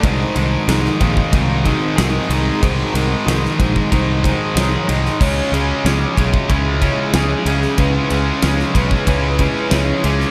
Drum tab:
CC |----------------|----------------|x---------------|----------------|
RD |x-x-x-x-x-x-x-x-|x-x-x-x-x-x-x-x-|--x-x-x-x-x-x-x-|x-x-x-x-x-x-x-x-|
SD |----oo------o---|----oo------o--o|----o-------o--o|----oo------o--o|
BD |o-----ooo-o-----|o-----ooo-o-----|o-----ooo-o-----|o-----ooo-o-----|